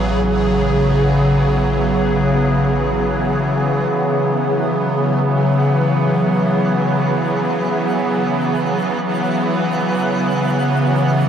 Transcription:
0.00 3.86 A1 medium
0.00 11.29 C#3 medium
0.00 11.29 E3 medium
0.00 11.29 F#3 medium
0.00 11.29 B3 medium
0.00 11.29 G#4 medium
0.00 3.85 F#5 medium
3.86 11.29 F#5 medium

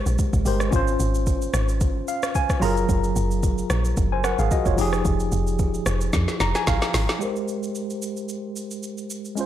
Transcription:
0.00 0.41 G#3 medium
0.00 0.42 G4 medium
0.00 0.42 A#4 medium
0.00 0.43 C5 medium
0.06 0.17 A#1 medium
0.06 shaker medium
0.19 kick loud
0.19 shaker medium
0.33 0.44 G#1 medium
0.33 kick loud
0.33 shaker medium
0.45 0.70 G1 medium
0.45 0.72 G#3 medium
0.45 0.73 G4 medium
0.45 0.73 A#4 medium
0.45 0.74 C5 medium
0.45 open hi-hat medium
0.45 shaker medium
0.60 cross-stick medium
0.60 shaker soft
0.71 0.97 G#1 loud
0.71 2.57 C#4 medium
0.71 2.58 F4 medium
0.71 kick loud
0.71 shaker medium
0.76 2.60 C5 medium
0.88 shaker medium
1.00 1.48 G#1 loud
1.00 shaker medium
1.15 shaker medium
1.27 kick loud
1.27 shaker medium
1.42 shaker soft
1.54 2.02 G#1 loud
1.54 cross-stick loud
1.54 shaker loud
1.69 shaker medium
1.81 kick loud
1.81 shaker medium
2.08 2.33 F5 medium
2.08 shaker medium
2.23 cross-stick loud
2.23 shaker medium
2.35 2.60 G#5 medium
2.35 kick loud
2.35 shaker medium
2.50 kick loud
2.50 cross-stick medium
2.50 shaker medium
2.60 2.86 F#1 loud
2.60 4.73 F#3 medium
2.60 3.94 F4 medium
2.60 3.95 G#4 medium
2.60 2.87 A#5 medium
2.60 open hi-hat medium
2.60 shaker medium
2.65 3.96 A#4 medium
2.77 shaker medium
2.89 3.13 F#1 loud
2.89 kick loud
2.89 shaker medium
3.04 shaker medium
3.16 3.64 F#1 loud
3.16 shaker medium
3.31 shaker medium
3.43 kick loud
3.43 shaker medium
3.58 shaker medium
3.70 3.94 A#1 loud
3.70 cross-stick loud
3.70 shaker loud
3.85 shaker medium
3.97 4.34 F#1 loud
3.97 kick loud
3.97 shaker medium
4.12 4.24 C5 medium
4.12 4.24 G#5 medium
4.24 4.39 A#4 medium
4.24 4.38 F#5 medium
4.24 cross-stick loud
4.24 shaker medium
4.39 4.50 G#1 medium
4.39 4.51 G#4 medium
4.39 4.51 F5 medium
4.39 shaker medium
4.51 4.66 F#4 medium
4.51 4.65 D#5 medium
4.51 kick loud
4.51 shaker medium
4.66 4.77 F#1 medium
4.66 4.92 F4 medium
4.66 4.92 C#5 medium
4.66 kick loud
4.66 shaker medium
4.76 5.02 F1 loud
4.76 6.89 F3 medium
4.76 6.90 D#4 medium
4.76 6.91 G4 medium
4.76 open hi-hat medium
4.76 shaker loud
4.81 6.92 G#4 medium
4.93 cross-stick medium
4.93 shaker soft
5.05 5.29 F1 medium
5.05 kick loud
5.05 shaker medium
5.20 shaker medium
5.32 5.80 F1 loud
5.32 shaker medium
5.47 shaker medium
5.59 kick loud
5.59 shaker medium
5.74 shaker soft
5.86 6.10 F1 loud
5.86 cross-stick loud
5.86 shaker loud
6.01 shaker medium
6.13 6.27 F2 loud
6.13 kick loud
6.13 snare medium
6.13 shaker medium
6.28 snare medium
6.28 shaker soft
6.40 6.54 F1 loud
6.40 6.54 A#5 medium
6.40 snare medium
6.40 shaker medium
6.55 6.67 G#5 medium
6.55 snare medium
6.55 shaker medium
6.67 6.81 G#1 loud
6.67 7.18 F5 medium
6.67 kick loud
6.67 snare medium
6.67 shaker medium
6.82 snare medium
6.82 shaker medium
6.94 7.07 G#1 loud
6.94 snare loud
6.94 open hi-hat medium
6.94 shaker medium
7.09 snare loud
7.09 shaker soft
7.19 9.32 G#3 medium
7.19 9.33 G4 medium
7.19 9.34 A#4 medium
7.19 shaker medium
7.24 9.35 C5 medium
7.36 shaker soft
7.48 shaker medium
7.63 shaker medium
7.75 shaker medium
7.90 shaker soft
8.02 shaker medium
8.17 shaker medium
8.29 shaker medium
8.56 shaker medium
8.71 shaker medium
8.83 shaker medium
8.98 shaker medium
9.10 shaker medium
9.25 shaker soft
9.35 9.46 G#3 medium
9.35 9.46 C#4 medium
9.35 9.46 F4 medium
9.35 shaker medium
9.41 9.46 C5 medium

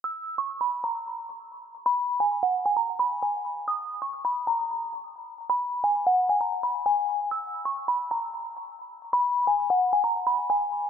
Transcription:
0.04 0.36 E6 medium
0.38 0.57 C#6 medium
0.61 0.80 B5 medium
0.84 1.82 A#5 medium
1.86 2.18 B5 loud
2.20 2.39 G#5 medium
2.43 2.62 F#5 medium
2.66 2.75 G#5 medium
2.77 2.96 A#5 medium
2.99 3.19 B5 medium
3.23 3.65 G#5 medium
3.68 4.00 D#6 medium
4.02 4.21 C#6 medium
4.25 4.44 B5 medium
4.47 5.46 A#5 medium
5.50 5.82 B5 medium
5.84 6.03 G#5 medium
6.07 6.26 F#5 medium
6.29 6.39 G#5 medium
6.41 6.60 A#5 medium
6.63 6.82 B5 medium
6.86 7.29 G#5 medium
7.31 7.63 E6 medium
7.65 7.85 C#6 medium
7.88 8.07 B5 medium
8.11 9.09 A#5 medium
9.13 9.45 B5 loud
9.47 9.66 G#5 medium
9.70 9.89 F#5 medium
9.93 10.02 G#5 medium
10.04 10.23 A#5 medium
10.27 10.46 B5 medium
10.50 10.90 G#5 medium

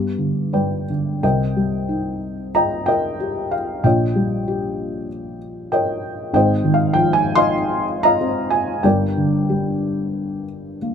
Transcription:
0.00 0.54 G2 soft
0.00 1.20 B3 soft
0.00 0.85 G4 soft
0.18 0.88 D3 soft
0.53 1.22 G2 soft
0.53 1.19 B4 soft
0.53 1.19 D5 soft
0.53 1.22 G5 soft
0.90 1.23 D3 soft
1.23 3.80 C2 soft
1.23 3.80 C3 soft
1.23 2.51 A#4 medium
1.23 2.51 D#5 medium
1.23 2.51 G5 medium
1.57 2.84 G3 soft
1.89 3.16 D#4 soft
2.55 2.87 D#5 medium
2.55 2.85 G5 medium
2.55 2.89 A#5 medium
2.86 3.81 A#4 medium
2.86 3.81 D#5 medium
2.86 3.54 G5 medium
3.20 3.82 G4 soft
3.51 3.85 F5 medium
3.84 6.30 A#1 soft
3.84 6.30 A#2 medium
3.84 5.07 C#5 medium
3.84 5.07 D#5 soft
3.84 5.06 G5 medium
4.16 5.38 G3 soft
4.48 5.69 G4 soft
5.72 6.33 A#4 medium
5.72 6.31 C#5 medium
5.72 6.31 D#5 medium
5.72 6.32 G5 medium
6.33 8.80 G#1 medium
6.33 8.80 G#2 medium
6.33 7.54 C5 medium
6.33 7.36 D#5 medium
6.33 6.76 G5 medium
6.64 7.85 D#3 medium
6.74 6.95 F5 medium
6.93 8.17 F3 medium
6.93 7.15 G5 medium
7.13 7.36 G#5 medium
7.35 8.04 D#5 medium
7.35 8.04 F5 medium
7.35 8.07 C6 loud
8.03 8.80 D#5 medium
8.03 8.81 F5 medium
8.03 8.53 A#5 loud
8.21 8.83 C4 medium
8.50 8.85 G#5 medium
8.83 10.94 G1 medium
8.83 10.94 G2 medium
8.83 10.78 A#4 medium
8.83 10.78 D5 medium
8.83 10.77 G5 medium
9.17 10.44 D3 soft
9.50 10.78 G3 soft
10.82 10.94 A#3 soft

